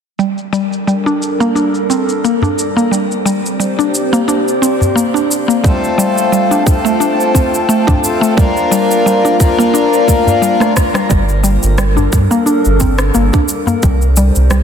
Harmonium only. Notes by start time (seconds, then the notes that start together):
5.62 A3 C4 F4 A4
6.65 A3 C4 F4
6.69 A4
8.02 A3 C4 F4 A4
8.35 A#3 D4 F4 A#4
9.38 A#3 D4 F4
9.42 A#4
10.76 A#3 D4 F4 A#4